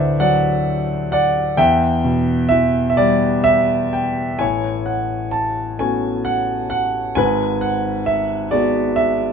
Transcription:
0.00 1.54 D2 medium
0.00 1.08 A2 soft
0.00 1.54 D3 medium
0.00 1.60 B4 medium
0.00 0.18 C5 medium
0.00 0.21 D5 medium
0.00 0.22 E5 medium
0.00 0.20 F#5 loud
0.20 1.54 F#3 medium
0.20 1.08 D5 medium
0.20 1.11 F#5 medium
1.12 1.55 D5 medium
1.12 1.55 F#5 medium
1.57 4.37 E2 medium
1.57 2.47 E5 medium
1.57 3.89 G5 loud
2.04 3.90 B2 medium
2.49 4.37 E3 medium
2.49 2.88 E5 medium
2.90 2.98 E5 medium
2.97 4.37 G3 medium
2.97 3.47 D5 medium
3.44 4.43 E5 loud
3.93 4.37 G5 medium
4.39 7.14 A1 soft
4.39 7.13 A2 medium
4.39 5.77 C#5 medium
4.39 4.89 G#5 medium
4.86 5.30 F#5 medium
5.31 5.81 A5 medium
5.79 7.13 A3 soft
5.79 7.13 B3 soft
5.79 7.13 C#4 soft
5.79 7.13 F#4 soft
5.79 6.28 G#5 medium
6.25 6.68 F#5 medium
6.70 7.18 F#5 medium
7.15 9.33 G#1 medium
7.15 9.33 G#2 medium
7.15 8.49 B4 medium
7.15 7.63 G#5 loud
7.61 8.08 F#5 medium
8.06 8.53 E5 medium
8.51 9.33 G#3 medium
8.51 9.33 B3 soft
8.51 9.33 F#4 medium
8.51 8.98 D5 medium
8.96 9.33 E5 medium

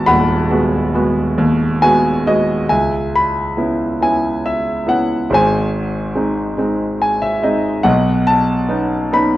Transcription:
0.00 0.07 D#2 medium
0.00 0.50 G#3 medium
0.00 0.51 B3 medium
0.00 0.51 F#4 medium
0.00 2.72 A5 loud
0.00 0.06 B5 medium
0.06 2.66 D#1 medium
0.06 1.36 D#2 medium
0.06 2.22 F#5 medium
0.06 2.22 B5 loud
0.50 0.93 G#3 medium
0.50 0.94 B3 medium
0.50 0.94 F#4 medium
0.94 1.65 G#3 medium
0.94 1.65 B3 soft
0.94 1.66 F#4 medium
1.38 2.66 D#2 medium
1.82 2.25 G#3 medium
1.82 2.26 B3 medium
1.82 2.26 F#4 medium
1.82 2.23 G#5 medium
2.27 2.62 G#3 medium
2.27 2.62 B3 medium
2.27 2.62 F#4 medium
2.27 2.68 D#5 medium
2.70 5.27 C#2 medium
2.70 3.97 E5 medium
2.70 3.15 G#5 medium
3.16 4.05 B5 medium
3.57 3.99 B3 soft
3.57 4.00 C#4 soft
3.57 4.01 E4 soft
4.01 4.85 B3 soft
4.01 4.85 C#4 soft
4.01 4.86 E4 medium
4.01 4.47 G#5 medium
4.45 4.90 E5 medium
4.87 5.29 B3 soft
4.87 5.29 C#4 soft
4.87 5.29 E4 soft
4.87 5.32 F#5 medium
5.30 7.81 G#1 medium
5.30 7.82 G#2 medium
5.30 7.41 C5 medium
5.34 7.00 G#5 medium
6.15 6.56 G#3 soft
6.15 6.57 C4 soft
6.15 6.57 D#4 medium
6.57 7.41 G#3 soft
6.57 7.41 C4 soft
6.57 7.41 D#4 soft
7.02 7.21 G#5 medium
7.22 7.42 E5 medium
7.42 7.84 G#3 medium
7.42 7.84 C4 soft
7.42 7.84 D#4 medium
7.42 7.83 D#5 medium
7.83 9.37 B1 medium
7.83 9.37 B2 medium
7.83 9.09 D#5 medium
7.83 8.24 F#5 medium
8.27 9.15 A5 medium
8.69 9.10 B3 medium
8.69 9.11 C#4 soft
8.69 9.11 D#4 medium
9.12 9.37 B3 soft
9.12 9.37 C#4 soft
9.12 9.37 D#4 medium
9.12 9.37 B5 medium

